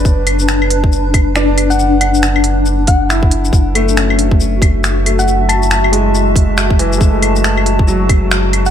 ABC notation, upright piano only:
X:1
M:4/4
L:1/16
Q:"Swing 16ths" 1/4=138
K:F#m
V:1 name="Upright piano"
[Bcd]12 D4- | D8- D3 z E4- | E2 A,2 C8- C2 A,2- | A,6 G,8 E, G, |
A,8 F,8 |]